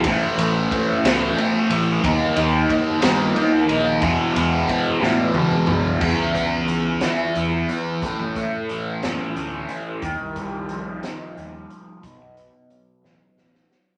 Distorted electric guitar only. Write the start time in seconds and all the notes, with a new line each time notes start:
0.06 A2 E3 A3
0.38 E3 A3
1.05 A2 E3 A3
1.37 A2 E3 A3
1.70 E3 A3
2.03 D#3 A#3 D#4
2.36 A#3 D#4
3.01 D#3 A#3 D#4
3.35 D#3 A#3 D#4
3.66 A#3 D#4
4.01 E2 B2 E3
4.35 B2 E3
5.01 E2 B2 E3
5.36 E2 B2 E3
5.67 B2 E3
6.01 E2
6.35 B3
6.68 E3
7.02 E4
7.37 B3
7.69 E3
8.02 A2
8.36 A3
8.70 E3
9.04 C#4
9.37 A3
9.69 E3
10.01 D#3
10.37 G3
10.71 F3
11.03 D#4
11.37 G3
11.71 F3
12.03 B2
12.35 B3
12.70 F#3
13.03 D#4
13.37 B3
13.69 F#3